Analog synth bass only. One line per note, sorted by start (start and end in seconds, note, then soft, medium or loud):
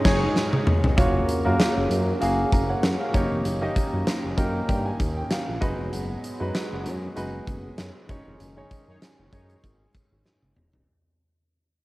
0.05 0.26 F#1 loud
0.98 1.21 F#1 medium
1.45 1.56 F#2 loud
1.76 1.87 F#1 medium
1.90 2.14 F#2 medium
2.21 2.45 F#1 medium
2.52 2.76 F#1 medium
2.83 2.96 F#2 medium
3.14 3.27 F#1 loud
3.31 3.42 F1 medium
3.45 3.68 F#1 loud
3.93 4.04 F#2 medium
4.24 4.35 F#1 medium
4.38 4.61 F#2 medium
4.69 4.92 G2 medium
5.00 5.23 D#2 medium
5.48 5.58 A#1 medium
5.62 5.74 F#1 medium
5.79 5.89 F1 medium
5.93 6.16 F#1 medium
6.40 6.51 F#2 medium
6.71 6.87 F#1 medium
6.85 7.08 F#2 medium
7.16 7.39 F#1 loud
7.47 7.70 F#1 medium
7.78 7.91 F#2 medium
8.09 8.22 F#1 medium
8.26 8.37 F1 medium
8.40 8.63 F#1 loud
8.88 8.98 F#2 medium
9.19 9.29 F#1 medium
9.33 9.56 F#2 medium
9.64 9.87 G#1 medium
9.95 10.01 G#1 soft
10.12 10.22 G#1 medium
10.43 10.53 F#1 medium
10.56 10.69 E1 medium
10.73 10.84 F1 medium